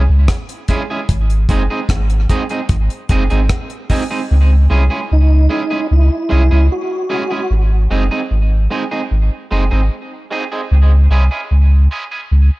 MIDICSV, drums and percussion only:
0, 0, Header, 1, 2, 480
1, 0, Start_track
1, 0, Key_signature, 4, "minor"
1, 0, Tempo, 801068
1, 651, Time_signature, 4, 2, 24, 8
1, 7548, End_track
2, 0, Start_track
2, 0, Title_t, "Drums"
2, 169, Note_on_c, 9, 37, 102
2, 170, Note_on_c, 9, 36, 101
2, 170, Note_on_c, 9, 42, 98
2, 229, Note_off_c, 9, 37, 0
2, 230, Note_off_c, 9, 36, 0
2, 230, Note_off_c, 9, 42, 0
2, 293, Note_on_c, 9, 42, 48
2, 353, Note_off_c, 9, 42, 0
2, 408, Note_on_c, 9, 42, 74
2, 412, Note_on_c, 9, 36, 76
2, 468, Note_off_c, 9, 42, 0
2, 471, Note_off_c, 9, 36, 0
2, 652, Note_on_c, 9, 42, 95
2, 653, Note_on_c, 9, 36, 103
2, 712, Note_off_c, 9, 42, 0
2, 713, Note_off_c, 9, 36, 0
2, 778, Note_on_c, 9, 42, 47
2, 838, Note_off_c, 9, 42, 0
2, 892, Note_on_c, 9, 36, 79
2, 892, Note_on_c, 9, 42, 66
2, 952, Note_off_c, 9, 36, 0
2, 952, Note_off_c, 9, 42, 0
2, 1132, Note_on_c, 9, 36, 112
2, 1135, Note_on_c, 9, 42, 98
2, 1138, Note_on_c, 9, 37, 92
2, 1192, Note_off_c, 9, 36, 0
2, 1195, Note_off_c, 9, 42, 0
2, 1198, Note_off_c, 9, 37, 0
2, 1257, Note_on_c, 9, 42, 53
2, 1316, Note_off_c, 9, 42, 0
2, 1375, Note_on_c, 9, 36, 78
2, 1375, Note_on_c, 9, 42, 63
2, 1435, Note_off_c, 9, 36, 0
2, 1435, Note_off_c, 9, 42, 0
2, 1494, Note_on_c, 9, 42, 32
2, 1554, Note_off_c, 9, 42, 0
2, 1612, Note_on_c, 9, 42, 88
2, 1614, Note_on_c, 9, 36, 107
2, 1671, Note_off_c, 9, 42, 0
2, 1674, Note_off_c, 9, 36, 0
2, 1739, Note_on_c, 9, 42, 45
2, 1799, Note_off_c, 9, 42, 0
2, 1853, Note_on_c, 9, 42, 59
2, 1854, Note_on_c, 9, 36, 90
2, 1913, Note_off_c, 9, 42, 0
2, 1914, Note_off_c, 9, 36, 0
2, 1979, Note_on_c, 9, 42, 33
2, 2039, Note_off_c, 9, 42, 0
2, 2094, Note_on_c, 9, 37, 104
2, 2095, Note_on_c, 9, 36, 106
2, 2095, Note_on_c, 9, 42, 96
2, 2154, Note_off_c, 9, 37, 0
2, 2155, Note_off_c, 9, 36, 0
2, 2155, Note_off_c, 9, 42, 0
2, 2216, Note_on_c, 9, 42, 45
2, 2276, Note_off_c, 9, 42, 0
2, 2335, Note_on_c, 9, 46, 69
2, 2336, Note_on_c, 9, 36, 79
2, 2395, Note_off_c, 9, 46, 0
2, 2396, Note_off_c, 9, 36, 0
2, 7548, End_track
0, 0, End_of_file